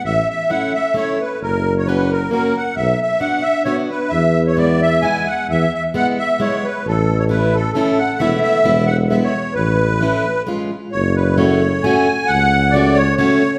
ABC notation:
X:1
M:3/4
L:1/16
Q:"Swing" 1/4=132
K:A
V:1 name="Accordion"
e2 e2 f2 e2 c2 B2 | ^A3 c B2 A2 A2 f2 | e2 e2 f2 e2 c2 B2 | e3 c d2 e2 g2 f2 |
e2 e2 f2 e2 c2 B2 | A3 c B2 A2 A2 f2 | e2 e4 f2 e c3 | B8 z4 |
[K:F#m] c2 B2 c4 g4 | f4 d2 c2 c4 |]
V:2 name="Steel-string acoustic guitar"
z4 [A,CE]2 z2 [A,CE]2 z2 | z4 [^A,CF]2 z2 [A,CF]2 z2 | z4 [B,DF]2 z2 [B,DF]2 z2 | z4 [G,B,E]2 z2 [G,B,E]2 z2 |
z4 [G,B,E]2 z2 [G,B,E]2 z2 | z4 [A,CE]2 z2 [A,CE]2 z2 | [A,B,E]4 [G,B,E]2 z2 [G,B,E]2 z2 | z4 [A,CE]2 z2 [G,C^E]2 z2 |
[K:F#m] z4 [A,CF]2 z2 [A,CF]2 z2 | z4 [A,CF]2 z2 [A,CF]2 z2 |]
V:3 name="Tuba" clef=bass
A,,,2 z8 z2 | F,,,12 | B,,,2 z8 z2 | E,,12 |
E,,2 z8 z2 | A,,,12 | E,,,2 z2 E,,,8 | A,,,8 z4 |
[K:F#m] F,,,12 | C,,12 |]